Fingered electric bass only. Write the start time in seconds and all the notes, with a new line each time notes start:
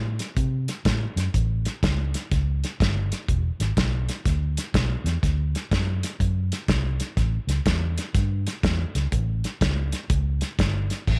Already playing: A2
0.37 C3
0.85 A2
1.16 F#2
1.34 A1
1.83 C#2
2.31 C#2
2.80 G1
3.29 E1
3.60 G#1
3.77 B1
4.26 D2
4.74 B1
5.04 E2
5.23 D2
5.71 F#2
6.20 F#2
6.68 C2
7.17 A1
7.47 C#2
7.66 E2
8.15 G2
8.64 E2
8.95 C#2
9.12 A1
9.61 C#2
10.10 C#2
10.59 G1
11.08 A1